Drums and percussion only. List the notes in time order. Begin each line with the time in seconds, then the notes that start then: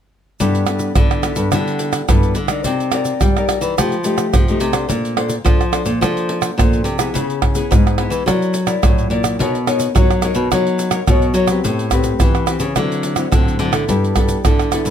0.40 pandeiro, shaker, surdo
0.55 pandeiro, shaker
0.67 pandeiro, tamborim, shaker
0.79 pandeiro, shaker
0.95 pandeiro, tamborim, shaker, surdo
1.11 pandeiro, tamborim, shaker
1.23 pandeiro, tamborim, shaker
1.36 pandeiro, shaker
1.52 pandeiro, tamborim, shaker, surdo
1.67 pandeiro, shaker
1.79 pandeiro, shaker
1.93 pandeiro, tamborim, shaker
2.09 pandeiro, tamborim, shaker, surdo
2.23 pandeiro, shaker
2.35 pandeiro, shaker
2.48 pandeiro, tamborim, shaker
2.64 pandeiro, shaker, surdo
2.80 pandeiro, shaker
2.92 pandeiro, tamborim, shaker
3.05 pandeiro, shaker
3.21 pandeiro, tamborim, shaker, surdo
3.37 pandeiro, tamborim, shaker
3.49 pandeiro, tamborim, shaker
3.62 pandeiro, shaker
3.78 pandeiro, tamborim, shaker, surdo
3.92 pandeiro, shaker
4.04 pandeiro, shaker
4.18 pandeiro, tamborim, shaker
4.34 pandeiro, tamborim, shaker, surdo
4.48 pandeiro, shaker
4.61 pandeiro, shaker
4.73 pandeiro, tamborim, shaker
4.89 pandeiro, shaker, surdo
5.05 pandeiro, shaker
5.17 pandeiro, tamborim
5.29 pandeiro, shaker
5.46 pandeiro, tamborim, shaker, surdo
5.61 pandeiro, tamborim, shaker
5.73 pandeiro, tamborim, shaker
5.86 pandeiro, shaker
6.02 pandeiro, tamborim, shaker, surdo
6.17 pandeiro, shaker
6.29 pandeiro
6.42 pandeiro, tamborim, shaker
6.59 pandeiro, tamborim, shaker, surdo
6.73 pandeiro, shaker
6.85 pandeiro, shaker
6.99 pandeiro, tamborim, shaker
7.15 pandeiro, shaker, surdo
7.30 pandeiro, shaker
7.42 pandeiro, tamborim, surdo
7.55 pandeiro, shaker
7.72 pandeiro, tamborim, shaker, surdo
7.87 pandeiro, tamborim, shaker
7.98 pandeiro, tamborim
8.12 pandeiro, shaker
8.28 pandeiro, tamborim, shaker, surdo
8.42 pandeiro, shaker
8.54 pandeiro, shaker
8.67 pandeiro, tamborim, shaker
8.83 pandeiro, tamborim, shaker, surdo
8.98 pandeiro, shaker
9.11 pandeiro
9.24 pandeiro, tamborim, shaker
9.40 pandeiro, shaker, surdo
9.55 pandeiro, shaker
9.67 pandeiro, tamborim, shaker
9.80 pandeiro, shaker
9.96 pandeiro, tamborim, shaker, surdo
10.11 pandeiro, tamborim, shaker
10.22 pandeiro, tamborim, shaker
10.35 pandeiro, shaker
10.52 pandeiro, tamborim, shaker, surdo
10.67 pandeiro, shaker
10.79 pandeiro, shaker
10.91 pandeiro, tamborim, shaker
11.07 pandeiro, tamborim, shaker, surdo
11.22 pandeiro, shaker
11.34 pandeiro, shaker
11.47 pandeiro, tamborim, shaker
11.64 pandeiro, shaker, surdo
11.79 pandeiro, shaker
11.91 pandeiro, tamborim, shaker, surdo
12.04 pandeiro, shaker
12.20 pandeiro, tamborim, shaker, surdo
12.35 pandeiro, tamborim, shaker
12.47 pandeiro, tamborim, shaker
12.60 pandeiro, shaker
12.76 pandeiro, tamborim, shaker, surdo
12.92 pandeiro, shaker
13.03 pandeiro, shaker
13.16 pandeiro, tamborim, shaker
13.32 pandeiro, tamborim, shaker, surdo
13.48 pandeiro, shaker
13.59 pandeiro
13.73 pandeiro, tamborim, shaker
13.89 pandeiro, shaker, surdo
14.04 pandeiro, shaker
14.16 pandeiro, tamborim, shaker, surdo
14.29 pandeiro, shaker
14.45 pandeiro, tamborim, shaker, surdo
14.59 pandeiro, tamborim, shaker
14.72 pandeiro, tamborim, shaker
14.86 pandeiro, shaker